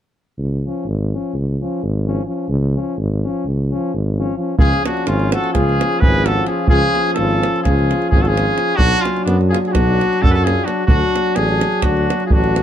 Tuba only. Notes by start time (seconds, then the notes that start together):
0.38 C#2
0.86 G#1
1.34 C#2
1.83 G#1
2.49 C#2
2.97 G#1
3.45 C#2
3.94 G#1
4.59 C#2
5.08 G#1
5.55 C#2
6.04 G#1
6.70 C#2
7.18 G#1
7.66 C#2
8.13 G#1
8.78 B1
9.27 F#2
9.74 B1
10.23 F#2
10.89 D2
11.37 A1
11.84 D2
12.32 A1